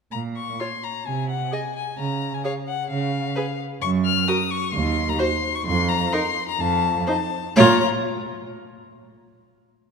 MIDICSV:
0, 0, Header, 1, 5, 480
1, 0, Start_track
1, 0, Key_signature, -5, "minor"
1, 0, Tempo, 461894
1, 123, Time_signature, 4, 2, 24, 8
1, 5878, Tempo, 477327
1, 10159, End_track
2, 0, Start_track
2, 0, Title_t, "Violin"
2, 0, Program_c, 0, 40
2, 118, Note_on_c, 0, 82, 64
2, 201, Note_off_c, 0, 82, 0
2, 373, Note_on_c, 0, 85, 58
2, 620, Note_on_c, 0, 84, 64
2, 636, Note_off_c, 0, 85, 0
2, 864, Note_on_c, 0, 82, 62
2, 880, Note_off_c, 0, 84, 0
2, 1103, Note_on_c, 0, 80, 63
2, 1119, Note_off_c, 0, 82, 0
2, 1335, Note_off_c, 0, 80, 0
2, 1342, Note_on_c, 0, 78, 57
2, 1585, Note_on_c, 0, 80, 63
2, 1600, Note_off_c, 0, 78, 0
2, 1822, Note_off_c, 0, 80, 0
2, 1827, Note_on_c, 0, 80, 61
2, 2058, Note_off_c, 0, 80, 0
2, 2065, Note_on_c, 0, 82, 69
2, 2429, Note_on_c, 0, 80, 62
2, 2445, Note_off_c, 0, 82, 0
2, 2534, Note_off_c, 0, 80, 0
2, 2540, Note_on_c, 0, 77, 72
2, 2623, Note_off_c, 0, 77, 0
2, 2781, Note_on_c, 0, 78, 66
2, 3010, Note_off_c, 0, 78, 0
2, 3016, Note_on_c, 0, 77, 66
2, 3716, Note_off_c, 0, 77, 0
2, 3965, Note_on_c, 0, 85, 89
2, 4048, Note_off_c, 0, 85, 0
2, 4207, Note_on_c, 0, 89, 97
2, 4450, Note_on_c, 0, 87, 85
2, 4466, Note_off_c, 0, 89, 0
2, 4684, Note_on_c, 0, 85, 89
2, 4699, Note_off_c, 0, 87, 0
2, 4919, Note_on_c, 0, 84, 88
2, 4934, Note_off_c, 0, 85, 0
2, 5285, Note_on_c, 0, 82, 82
2, 5301, Note_off_c, 0, 84, 0
2, 5394, Note_on_c, 0, 84, 95
2, 5410, Note_off_c, 0, 82, 0
2, 5766, Note_on_c, 0, 85, 81
2, 5782, Note_off_c, 0, 84, 0
2, 5877, Note_off_c, 0, 85, 0
2, 5883, Note_on_c, 0, 84, 104
2, 6110, Note_on_c, 0, 82, 93
2, 6125, Note_off_c, 0, 84, 0
2, 6348, Note_on_c, 0, 84, 95
2, 6363, Note_off_c, 0, 82, 0
2, 6705, Note_off_c, 0, 84, 0
2, 6715, Note_on_c, 0, 82, 87
2, 6830, Note_on_c, 0, 81, 91
2, 6845, Note_off_c, 0, 82, 0
2, 7308, Note_off_c, 0, 81, 0
2, 7314, Note_on_c, 0, 81, 85
2, 7791, Note_off_c, 0, 81, 0
2, 7802, Note_on_c, 0, 82, 105
2, 8067, Note_off_c, 0, 82, 0
2, 10159, End_track
3, 0, Start_track
3, 0, Title_t, "Violin"
3, 0, Program_c, 1, 40
3, 624, Note_on_c, 1, 73, 37
3, 707, Note_off_c, 1, 73, 0
3, 1585, Note_on_c, 1, 75, 39
3, 1668, Note_off_c, 1, 75, 0
3, 2541, Note_on_c, 1, 73, 47
3, 2624, Note_off_c, 1, 73, 0
3, 3486, Note_on_c, 1, 71, 51
3, 3569, Note_off_c, 1, 71, 0
3, 4445, Note_on_c, 1, 70, 57
3, 4528, Note_off_c, 1, 70, 0
3, 5395, Note_on_c, 1, 72, 65
3, 5478, Note_off_c, 1, 72, 0
3, 6348, Note_on_c, 1, 70, 66
3, 6428, Note_off_c, 1, 70, 0
3, 7298, Note_on_c, 1, 72, 60
3, 7379, Note_off_c, 1, 72, 0
3, 7791, Note_on_c, 1, 73, 83
3, 8062, Note_off_c, 1, 73, 0
3, 10159, End_track
4, 0, Start_track
4, 0, Title_t, "Viola"
4, 0, Program_c, 2, 41
4, 621, Note_on_c, 2, 65, 39
4, 704, Note_off_c, 2, 65, 0
4, 1575, Note_on_c, 2, 68, 41
4, 1658, Note_off_c, 2, 68, 0
4, 2535, Note_on_c, 2, 68, 48
4, 2618, Note_off_c, 2, 68, 0
4, 3498, Note_on_c, 2, 68, 55
4, 3581, Note_off_c, 2, 68, 0
4, 4449, Note_on_c, 2, 66, 58
4, 4532, Note_off_c, 2, 66, 0
4, 5390, Note_on_c, 2, 66, 59
4, 5473, Note_off_c, 2, 66, 0
4, 6355, Note_on_c, 2, 63, 63
4, 6435, Note_off_c, 2, 63, 0
4, 7308, Note_on_c, 2, 63, 59
4, 7388, Note_off_c, 2, 63, 0
4, 7803, Note_on_c, 2, 65, 83
4, 8068, Note_off_c, 2, 65, 0
4, 10159, End_track
5, 0, Start_track
5, 0, Title_t, "Cello"
5, 0, Program_c, 3, 42
5, 124, Note_on_c, 3, 46, 45
5, 537, Note_off_c, 3, 46, 0
5, 1097, Note_on_c, 3, 48, 50
5, 1497, Note_off_c, 3, 48, 0
5, 2050, Note_on_c, 3, 49, 53
5, 2452, Note_off_c, 3, 49, 0
5, 3011, Note_on_c, 3, 49, 57
5, 3411, Note_off_c, 3, 49, 0
5, 3966, Note_on_c, 3, 42, 69
5, 4365, Note_off_c, 3, 42, 0
5, 4917, Note_on_c, 3, 39, 73
5, 5314, Note_off_c, 3, 39, 0
5, 5873, Note_on_c, 3, 41, 80
5, 6269, Note_off_c, 3, 41, 0
5, 6820, Note_on_c, 3, 41, 72
5, 7223, Note_off_c, 3, 41, 0
5, 7796, Note_on_c, 3, 46, 84
5, 8064, Note_off_c, 3, 46, 0
5, 10159, End_track
0, 0, End_of_file